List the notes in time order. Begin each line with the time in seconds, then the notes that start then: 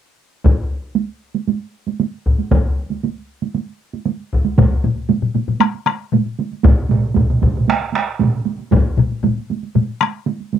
0.44 taiko, taiko high
0.95 taiko high
1.35 taiko high
1.48 taiko high
1.87 taiko high
2.00 taiko high
2.26 taiko
2.39 taiko high
2.51 taiko, taiko high
2.90 taiko high
3.03 taiko high
3.42 taiko high
3.55 taiko high
3.93 taiko high
4.06 taiko high
4.33 taiko
4.45 taiko high
4.58 taiko, taiko low-mid, taiko high
4.84 taiko low-mid, taiko high
4.96 taiko high
5.09 taiko low-mid, taiko high
5.22 taiko low-mid, taiko high
5.35 taiko low-mid, taiko high
5.48 taiko low-mid, taiko high
5.60 taiko rim, taiko high
5.74 taiko high
5.87 taiko rim, taiko high
6.13 taiko low-mid, taiko high
6.26 taiko high
6.39 taiko high
6.52 taiko high
6.64 taiko, taiko mid, taiko high
6.89 taiko mid, taiko high
7.02 taiko high
7.15 taiko, taiko mid, taiko high
7.28 taiko mid, taiko high
7.42 taiko, taiko mid, taiko high
7.54 taiko mid, taiko high
7.68 taiko rim, taiko high
7.80 taiko high
7.93 taiko rim, taiko high
8.19 taiko mid, taiko high
8.33 taiko high
8.46 taiko high
8.59 taiko high
8.71 taiko, taiko low-mid, taiko high
8.85 taiko high
8.97 taiko low-mid, taiko high
9.11 taiko high
9.23 taiko low-mid, taiko high
9.37 taiko high
9.50 taiko high
9.63 taiko high
9.75 taiko low-mid, taiko high
10.01 taiko rim, taiko high
10.27 taiko high
10.41 taiko high
10.53 taiko high